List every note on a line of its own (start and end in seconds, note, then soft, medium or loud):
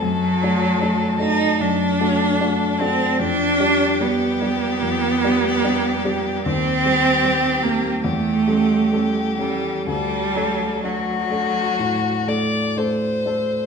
0.00 0.42 F#2 medium
0.00 1.20 F#3 loud
0.00 3.20 A4 medium
0.43 0.78 A3 medium
0.43 0.79 D4 medium
0.43 0.79 F#4 medium
0.81 1.17 A3 medium
0.81 1.17 D4 medium
0.81 1.17 F#4 medium
1.20 1.56 A3 medium
1.20 1.56 D4 soft
1.20 1.62 D#4 loud
1.20 1.56 F#4 medium
1.60 1.99 F#2 medium
1.60 2.82 D4 loud
2.01 2.37 A3 medium
2.01 2.37 D4 medium
2.01 2.37 F#4 medium
2.41 2.76 A3 medium
2.41 2.76 D4 medium
2.41 2.77 F#4 medium
2.80 3.15 A3 medium
2.80 3.21 C4 loud
2.80 3.16 D4 medium
2.80 3.16 F#4 medium
3.18 3.58 F2 medium
3.18 4.03 D4 loud
3.18 6.46 G4 medium
3.60 3.96 G3 medium
3.60 3.96 D4 medium
3.60 3.96 G4 medium
4.00 4.37 G3 medium
4.00 6.46 B3 loud
4.00 4.38 D4 medium
4.00 4.38 G4 medium
4.42 4.79 G3 medium
4.42 4.79 D4 soft
4.42 4.79 G4 medium
4.82 5.22 F2 medium
5.24 5.61 G3 medium
5.24 5.61 D4 medium
5.24 5.61 G4 medium
5.64 6.01 G3 medium
5.64 6.01 D4 medium
5.64 6.01 G4 medium
6.05 6.42 G3 medium
6.05 6.42 D4 medium
6.05 6.42 G4 medium
6.46 6.85 D#2 medium
6.46 7.64 C4 loud
6.46 8.01 G4 medium
6.86 7.21 G3 medium
6.86 7.21 C4 soft
6.86 7.21 G4 medium
7.25 7.60 G3 medium
7.25 7.60 C4 medium
7.25 7.60 G4 medium
7.63 8.00 G3 soft
7.63 8.05 A#3 loud
7.63 8.01 C4 medium
7.63 8.01 G4 medium
8.03 8.47 E2 medium
8.03 9.38 A3 loud
8.03 9.84 G4 medium
8.47 8.89 G3 soft
8.47 8.89 C#4 medium
8.47 8.89 A4 medium
8.93 9.36 G3 medium
8.93 9.36 C#4 medium
8.93 9.36 A4 medium
9.39 9.84 G3 medium
9.39 9.86 G3 medium
9.39 9.84 C#4 soft
9.39 9.84 A4 medium
9.87 10.34 D2 medium
9.87 10.86 G3 loud
9.87 10.83 A4 medium
10.35 10.80 A3 soft
10.35 10.80 D4 medium
10.35 10.80 A4 soft
10.84 12.78 F#3 medium
10.84 11.28 A3 soft
10.84 11.28 D4 soft
10.84 12.30 F#4 medium
10.84 11.29 A4 soft
11.30 11.76 A3 soft
11.30 11.76 D4 soft
11.30 11.76 A4 soft
11.79 12.27 A2 medium
12.27 12.73 A3 soft
12.27 12.73 D4 soft
12.27 12.73 A4 soft
12.27 12.79 D5 medium
12.77 13.22 A3 soft
12.77 13.22 D4 soft
12.77 13.23 A4 medium
12.77 13.66 C5 medium
13.25 13.66 A3 soft
13.25 13.66 D4 soft
13.25 13.66 A4 medium